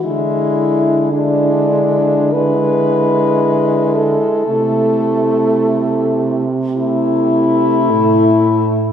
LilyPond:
<<
  \new Staff \with { instrumentName = "French horn" } { \time 4/4 \key a \dorian \tempo 4 = 55 e'4 d'4 b'4. a'8~ | a'4.~ a'16 r16 e'2 | }
  \new Staff \with { instrumentName = "French horn" } { \time 4/4 \key a \dorian e'4 e'4 e'2 | e'4.~ e'16 r16 e'2 | }
  \new Staff \with { instrumentName = "French horn" } { \clef bass \time 4/4 \key a \dorian gis4 gis4 gis2 | a4.~ a16 r16 a2 | }
  \new Staff \with { instrumentName = "French horn" } { \clef bass \time 4/4 \key a \dorian d2.~ d8. r16 | c2. a,4 | }
>>